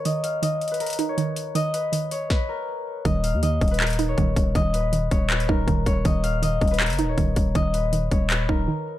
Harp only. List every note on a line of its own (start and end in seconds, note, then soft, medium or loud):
0.00 0.77 A#4 medium
0.00 1.09 C#5 medium
0.05 0.42 D#5 medium
0.24 1.90 F5 medium
0.43 1.55 D#5 medium
0.71 0.86 B4 medium
0.80 1.80 A#4 medium
1.09 2.11 C#5 medium
1.55 3.05 D#5 loud
1.74 2.30 B4 medium
2.12 4.03 C#5 medium
2.30 2.55 B4 medium
2.49 3.77 A#4 medium
3.05 3.42 D#5 medium
3.24 4.90 F5 medium
3.43 4.55 D#5 medium
3.71 3.86 B4 medium
3.80 4.80 A#4 medium
4.09 5.11 C#5 medium
4.55 6.05 D#5 loud
4.74 5.29 B4 medium
5.11 5.86 C#5 medium
5.30 5.55 B4 medium
5.49 6.77 A#4 medium
5.86 7.09 C#5 medium
6.05 6.42 D#5 medium
6.24 7.90 F5 medium
6.42 7.55 D#5 medium
6.71 6.86 B4 medium
6.80 7.80 A#4 medium
7.09 8.11 C#5 medium
7.55 8.99 D#5 loud
7.74 8.30 B4 medium
8.11 8.99 C#5 medium
8.30 8.55 B4 medium
8.49 8.99 A#4 medium